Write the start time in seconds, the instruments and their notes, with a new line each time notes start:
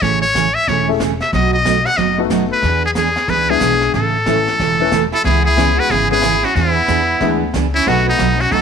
0.02 upright bass A1, steel-string acoustic guitar C#3 E3 A3 C#4 G#4, muted trumpet C#5, brush sweep, kick, snare
0.22 muted trumpet C#5
0.35 steel-string acoustic guitar C#3 E3 A3 C#4 G#4, kick, snare, hi-hat pedal
0.55 muted trumpet E5
0.68 upright bass E1, steel-string acoustic guitar C#3 E3 A3 C#4 G#4, muted trumpet C#5, brush sweep, kick, snare
0.88 upright piano A3 C#4 E4 G#4 A4
1.00 steel-string acoustic guitar C#3 E3 A3 C#4 G#4, kick, snare, hi-hat pedal
1.21 muted trumpet E5, snare
1.33 upright bass B1, steel-string acoustic guitar B2 F#3 A3 D#4 F#4, muted trumpet D#5, brush sweep, kick, snare
1.53 muted trumpet D#5
1.65 steel-string acoustic guitar B2 F#3 A3 D#4 F#4, kick, snare, hi-hat pedal
1.85 muted trumpet F#5, snare
1.97 upright bass F#1, steel-string acoustic guitar B2 F#3 A3 D#4 F#4, muted trumpet D#5, brush sweep, kick, snare
2.18 upright piano A3 B3 D#4 F#4 A4
2.30 steel-string acoustic guitar B2 F#3 A3 D#4 F#4, kick, snare, hi-hat pedal
2.53 muted trumpet B4
2.62 upright bass E2, steel-string acoustic guitar E3 B3 D4 G#4, brush sweep, kick, snare
2.86 muted trumpet G#4
2.95 steel-string acoustic guitar E3 B3 D4 G#4, muted trumpet G#4, kick, snare, hi-hat pedal
3.06 snare
3.16 snare
3.28 upright bass C#2, steel-string acoustic guitar E3 B3 D4 G#4, muted trumpet B4, brush sweep, kick, snare
3.49 upright piano G#3 B3 D4 E4 G#4, muted trumpet G#4
3.60 upright bass B1, steel-string acoustic guitar E3 B3 D4 G#4, kick, snare, hi-hat pedal
3.81 snare
3.94 upright bass A1, steel-string acoustic guitar C#3 E3 A3 C#4 A4, muted trumpet A4, brush sweep, kick, snare
4.26 steel-string acoustic guitar C#3 E3 A3 C#4 A4, upright piano E3 A3 C#4 E4 A4, kick, snare, hi-hat pedal
4.48 snare
4.59 upright bass E1, steel-string acoustic guitar C#3 E3 A3 C#4 A4, brush sweep, kick, snare
4.80 upright piano E3 A3 C#4 E4 B4
4.92 steel-string acoustic guitar C#3 E3 A3 C#4 A4, kick, snare, hi-hat pedal
5.12 fiddle E4, muted trumpet A4, snare
5.24 upright bass C#2, steel-string acoustic guitar C#3 E3 B3 C#4 G#4, fiddle E4, muted trumpet G#4, brush sweep, kick, snare
5.45 fiddle E4, muted trumpet G#4
5.56 steel-string acoustic guitar C#3 E3 B3 C#4 G#4, upright piano G#3 B3 C#4 E4 G#4, kick, snare, hi-hat pedal
5.77 fiddle F#4, muted trumpet B4
5.90 upright bass G#1, steel-string acoustic guitar C#3 E3 B3 C#4 G#4, fiddle E4, muted trumpet G#4, brush sweep, kick, snare
6.10 upright piano G#3 B3 C#4 E4 B4, fiddle E4, muted trumpet G#4
6.22 steel-string acoustic guitar C#3 E3 B3 C#4 G#4, kick, snare, hi-hat pedal
6.43 fiddle C#4, muted trumpet F#4, snare
6.55 upright bass E2, steel-string acoustic guitar E3 B3 D4 G#4, fiddle B3, muted trumpet E4, brush sweep, kick, snare
6.88 upright bass E2, steel-string acoustic guitar E3 B3 D4 G#4, kick, snare, hi-hat pedal
7.20 upright bass D2, steel-string acoustic guitar E3 B3 D4 G#4, upright piano G#3 B3 D4 E4 G#4, brush sweep, kick, snare
7.54 upright bass C#2, steel-string acoustic guitar E3 B3 D4 G#4, kick, snare, hi-hat pedal
7.74 fiddle C#4, muted trumpet E4
7.86 upright bass B1, steel-string acoustic guitar B2 F#3 A3 D#4 F#4, upright piano A3 B3 D#4 F#4 A4, fiddle B3, muted trumpet F#4, brush sweep, kick, snare
8.06 fiddle B3, muted trumpet D#4
8.19 upright bass B1, steel-string acoustic guitar B2 F#3 A3 D#4 F#4, kick, snare, hi-hat pedal
8.37 fiddle C#4, muted trumpet F#4, snare
8.51 upright bass C#2, steel-string acoustic guitar B2 F#3 A3 D#4 F#4, fiddle D#4, muted trumpet A4, brush sweep, kick, snare